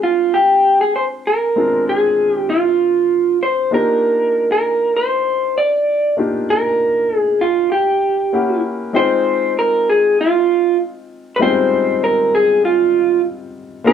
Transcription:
Already playing: G#3 C4 D4 F4 G5
0.03 F4
0.34 G4
0.81 G#4
0.96 C5
1.27 A#4
1.56 G#3 C4 D4 F4 A#4
1.89 G#4
2.33 G4
2.50 F4
3.43 C5
3.71 A#3 D4 D#4 F4 G4 A#4
4.52 A#4
4.97 C5
5.58 D5
6.17 A#3 D4 D#4 F4 G4
6.50 A#4
7.17 G#4
7.41 F4
7.72 G4
8.33 A#3 C#4 E4 G4 F#5
8.93 G#3 C4 D#4 F4 C5 G5
9.59 A#4
9.89 G#4
10.21 F4
11.36 G3 C4 B4
11.40 D#4 F4 C5 G5
11.46 G#3
12.04 A#4
12.35 G#4
12.65 F4
13.84 A#3 C4 D4 F4 G#4 C5

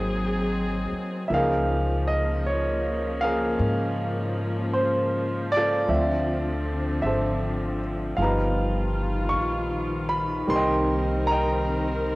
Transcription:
Already playing: G#1 F#3 A#3 C4 D#4 G#4 C5 D#5 F#5
0.92 muted upright bass stroke
1.28 C#2 F3 A#3 E5
1.32 C#3 F3 A#3 D#4 G#4 A#4 F5
2.07 D#5
2.46 C#5
3.21 G#4 A#4 F5
3.59 G#2
4.73 C5
5.52 D5
5.56 F4 A4
5.88 D2 D3 F3 A3 C4 E5
7.02 G#1 E5
7.06 A4 C5
8.17 G1 D#3 F3 G3 F4 F5
8.22 B3 D#4 B4 A#5
9.29 A#1 C#6
10.09 B5
10.47 C2 G3 A#3 C4 D#4 A#4 C6
10.56 D#5 G5
11.27 A#5
11.31 D#5 G5

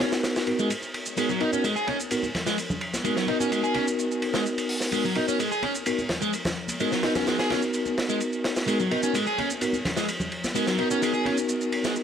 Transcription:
Already playing: B3 D#4 F#4 A#4
0.00 C#4, snare, ride, high conga
0.12 snare, ride, shaker
0.23 snare, ride, shaker
0.36 snare, ride, shaker
0.47 B3 D#4 F#4 A#4, ride
0.59 G#3, ride, shaker
0.70 ride, shaker
0.83 shaker
0.94 ride
1.06 shaker
1.17 G#3 B3 D#4 F#4 A#4, ride, shaker
1.29 F#3, shaker
1.40 B3 D#4 F#4 A#4, ride
1.53 B3 C#4 D#4 F#4 A#4, shaker
1.64 G#3, ride, shaker
1.76 G#4, shaker
1.87 C#4, ride, high conga
2.00 shaker
2.11 B3 D#4 F#4 A#4, ride, shaker
2.23 high conga, shaker
2.35 snare, ride, low conga
2.46 G#3, snare, shaker
2.58 ride, shaker
2.70 low conga, shaker
2.81 ride
2.94 snare, high conga, shaker
3.05 G#3 B3 D#4 F#4 A#4, ride, shaker
3.16 F#3, snare, shaker
3.28 B3 D#4 F#4 A#4, ride
3.40 B3 C#4 D#4 F#4 A#4, shaker
3.52 G#3, ride, shaker
3.64 G#4, ride, shaker
3.74 C#4, ride, high conga
3.88 shaker
3.99 shaker
4.11 shaker
4.22 ride
4.34 G#3, snare, ride, shaker
4.46 ride, shaker
4.58 ride, shaker
4.69 open hi-hat
4.80 snare, shaker
4.92 G#3 B3 D#4 F#4 A#4, ride, shaker
5.05 F#3, shaker
5.15 B3 D#4 F#4 A#4, ride
5.28 B3 C#4 D#4 F#4 A#4, shaker
5.39 G#3, ride, shaker
5.51 G#4, shaker
5.63 C#4, ride, high conga
5.75 shaker
5.86 B3 D#4 F#4 A#4, ride, shaker
5.98 high conga, shaker
6.09 snare, ride, low conga
6.22 G#3, ride, shaker
6.33 ride, shaker
6.45 snare, ride, low conga, shaker
6.56 ride
6.68 ride, high conga, shaker
6.80 G#3 B3 D#4 F#4 A#4, ride, shaker
6.92 F#3, snare, shaker
7.03 B3 D#4 F#4 A#4, snare, ride
7.15 B3 C#4 D#4 F#4 A#4, snare, ride, low conga, shaker
7.27 G#3, snare, ride, shaker
7.39 G#4, snare, ride, shaker
7.50 C#4, snare, ride, high conga
7.62 shaker
7.74 ride, shaker
7.86 high conga, shaker
7.98 snare, ride
8.09 G#3, shaker
8.21 ride, shaker
8.33 shaker
8.44 snare, ride
8.56 snare, ride, shaker
8.68 G#3 B3 D#4 F#4 A#4, ride, shaker
8.80 F#3, shaker
8.91 B3 D#4 F#4 A#4, ride
9.03 B3 C#4 D#4 F#4 A#4, shaker
9.14 G#3, ride, shaker
9.27 G#4, shaker
9.38 C#4, ride, high conga
9.50 shaker
9.61 B3 D#4 F#4 A#4, ride, shaker
9.73 high conga, shaker
9.85 snare, ride, low conga
9.96 G#3, snare, shaker
10.09 ride, shaker
10.20 low conga, shaker
10.32 ride
10.44 snare, high conga, shaker
10.55 G#3 B3 D#4 F#4 A#4, ride, shaker
10.67 F#3, snare, shaker
10.79 B3 D#4 F#4 A#4, ride
10.91 B3 C#4 D#4 F#4 A#4, shaker
11.02 G#3, ride, shaker
11.13 G#4, ride, shaker
11.25 C#4, ride, high conga
11.38 shaker
11.49 shaker
11.61 shaker
11.72 ride
11.84 G#3, snare, ride, shaker
11.96 ride, shaker

